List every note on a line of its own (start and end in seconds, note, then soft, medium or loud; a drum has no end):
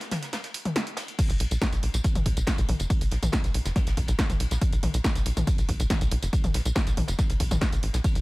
0.01 snare soft
0.01 closed hi-hat medium
0.11 snare loud
0.11 open hi-hat loud
0.11 mid tom medium
0.11 ride medium
0.23 snare soft
0.23 closed hi-hat medium
0.33 snare soft
0.33 snare loud
0.33 closed hi-hat medium
0.33 ride medium
0.44 snare soft
0.44 closed hi-hat medium
0.54 open hi-hat loud
0.54 ride medium
0.65 closed hi-hat medium
0.65 mid tom medium
0.65 ride soft
0.76 snare loud
0.76 closed hi-hat medium
0.76 ride medium
0.87 closed hi-hat medium
0.97 snare loud
0.97 open hi-hat loud
0.97 ride medium
1.08 closed hi-hat medium
1.08 ride soft
1.19 kick loud
1.19 closed hi-hat medium
1.19 crash loud
1.19 ride medium
1.19 tambourine medium
1.30 1.36 B1 medium
1.30 closed hi-hat medium
1.30 tambourine soft
1.40 1.47 B1 loud
1.40 open hi-hat loud
1.40 ride medium
1.51 1.57 B1 medium
1.51 closed hi-hat medium
1.51 tambourine medium
1.62 kick loud
1.62 snare loud
1.62 closed hi-hat medium
1.62 mid tom medium
1.62 tambourine medium
1.73 1.79 B1 medium
1.73 snare soft
1.73 closed hi-hat medium
1.73 tambourine soft
1.83 1.90 B1 loud
1.83 open hi-hat loud
1.83 ride medium
1.94 2.00 B1 medium
1.94 closed hi-hat medium
1.94 tambourine medium
2.03 kick loud
2.03 closed hi-hat medium
2.03 ride medium
2.03 tambourine medium
2.15 2.22 B1 medium
2.15 closed hi-hat medium
2.15 mid tom medium
2.15 ride soft
2.15 tambourine soft
2.26 2.33 B1 loud
2.26 kick medium
2.26 open hi-hat loud
2.26 ride medium
2.37 2.43 B1 medium
2.37 closed hi-hat medium
2.37 tambourine medium
2.47 kick loud
2.47 snare loud
2.47 closed hi-hat medium
2.47 ride medium
2.47 tambourine soft
2.58 2.65 B1 medium
2.58 closed hi-hat medium
2.58 ride soft
2.58 tambourine soft
2.68 2.75 B1 loud
2.68 open hi-hat loud
2.68 mid tom medium
2.68 ride medium
2.80 2.86 F#1 medium
2.80 closed hi-hat medium
2.80 tambourine medium
2.90 kick loud
2.90 closed hi-hat medium
2.90 ride medium
2.90 tambourine soft
3.01 3.07 B1 medium
3.01 open hi-hat medium
3.01 tambourine soft
3.11 3.18 B1 loud
3.11 snare soft
3.11 open hi-hat loud
3.11 ride medium
3.23 3.29 B1 medium
3.23 closed hi-hat medium
3.23 mid tom medium
3.23 tambourine medium
3.32 kick loud
3.32 snare loud
3.32 closed hi-hat medium
3.32 ride medium
3.32 tambourine medium
3.44 3.50 B1 medium
3.44 snare soft
3.44 closed hi-hat medium
3.44 tambourine soft
3.54 3.61 B1 loud
3.54 open hi-hat loud
3.54 ride medium
3.65 3.72 F#1 medium
3.65 snare medium
3.65 closed hi-hat medium
3.65 tambourine medium
3.76 kick loud
3.76 snare soft
3.76 closed hi-hat medium
3.76 mid tom medium
3.76 ride loud
3.76 tambourine soft
3.87 3.93 B1 medium
3.87 snare soft
3.87 closed hi-hat medium
3.87 tambourine soft
3.97 4.04 B1 loud
3.97 kick medium
3.97 open hi-hat loud
3.97 ride medium
4.07 4.15 B1 loud
4.07 snare soft
4.07 closed hi-hat medium
4.07 tambourine medium
4.19 kick loud
4.19 snare loud
4.19 closed hi-hat medium
4.19 ride medium
4.19 tambourine medium
4.30 4.36 B1 medium
4.30 snare soft
4.30 closed hi-hat medium
4.30 mid tom medium
4.30 tambourine soft
4.40 4.47 B1 loud
4.40 open hi-hat loud
4.40 ride medium
4.51 4.57 B1 medium
4.51 snare medium
4.51 closed hi-hat medium
4.51 tambourine medium
4.61 kick loud
4.61 closed hi-hat medium
4.61 ride medium
4.61 tambourine medium
4.73 4.79 B1 medium
4.73 closed hi-hat medium
4.73 tambourine soft
4.83 4.90 B1 loud
4.83 open hi-hat loud
4.83 mid tom medium
4.83 ride medium
4.94 5.00 B1 medium
4.94 closed hi-hat medium
4.94 tambourine medium
5.04 kick loud
5.04 snare loud
5.04 closed hi-hat medium
5.04 ride medium
5.04 tambourine medium
5.15 5.22 B1 medium
5.15 snare soft
5.15 closed hi-hat medium
5.15 tambourine soft
5.26 5.33 B1 loud
5.26 open hi-hat loud
5.26 ride medium
5.37 5.43 B1 medium
5.37 closed hi-hat medium
5.37 mid tom medium
5.37 tambourine medium
5.47 kick loud
5.47 closed hi-hat medium
5.47 ride loud
5.47 tambourine medium
5.58 5.65 B1 medium
5.58 closed hi-hat medium
5.58 ride soft
5.58 tambourine soft
5.69 5.75 B1 loud
5.69 kick medium
5.69 open hi-hat loud
5.69 ride medium
5.80 5.86 B1 medium
5.80 closed hi-hat medium
5.80 tambourine medium
5.90 kick loud
5.90 snare loud
5.90 closed hi-hat medium
5.90 mid tom medium
5.90 ride medium
5.90 tambourine medium
6.01 6.07 B1 medium
6.01 closed hi-hat medium
6.01 ride soft
6.01 tambourine soft
6.11 6.18 B1 loud
6.11 open hi-hat loud
6.11 ride medium
6.23 6.29 F#1 medium
6.23 closed hi-hat medium
6.23 tambourine medium
6.33 kick loud
6.33 closed hi-hat medium
6.33 ride medium
6.33 tambourine medium
6.44 6.50 B1 medium
6.44 open hi-hat medium
6.44 mid tom medium
6.44 tambourine soft
6.54 6.61 B1 loud
6.54 snare soft
6.54 open hi-hat loud
6.54 ride medium
6.65 6.72 B1 medium
6.65 closed hi-hat medium
6.65 tambourine medium
6.75 kick loud
6.75 snare loud
6.75 closed hi-hat medium
6.75 ride medium
6.75 tambourine medium
6.87 6.93 B1 medium
6.87 snare soft
6.87 closed hi-hat medium
6.87 tambourine soft
6.97 7.04 B1 loud
6.97 open hi-hat loud
6.97 mid tom medium
6.97 ride medium
7.08 7.15 F#1 medium
7.08 snare medium
7.08 closed hi-hat medium
7.08 tambourine medium
7.19 kick loud
7.19 snare soft
7.19 closed hi-hat medium
7.19 ride medium
7.19 tambourine medium
7.30 7.36 B1 medium
7.30 snare soft
7.30 closed hi-hat medium
7.30 tambourine soft
7.40 7.47 B1 loud
7.40 kick medium
7.40 open hi-hat loud
7.40 ride medium
7.51 7.57 B1 medium
7.51 snare soft
7.51 closed hi-hat medium
7.51 mid tom medium
7.51 tambourine medium
7.61 kick loud
7.61 snare loud
7.61 closed hi-hat medium
7.61 ride medium
7.61 tambourine medium
7.72 7.79 B1 medium
7.72 snare soft
7.72 closed hi-hat medium
7.72 tambourine soft
7.83 7.90 A1 loud
7.83 open hi-hat loud
7.83 ride medium
7.94 8.00 B1 medium
7.94 snare medium
7.94 closed hi-hat medium
7.94 tambourine medium
8.04 kick loud
8.04 closed hi-hat medium
8.04 ride medium
8.04 tambourine medium
8.15 8.21 B1 medium
8.15 closed hi-hat medium
8.15 tambourine soft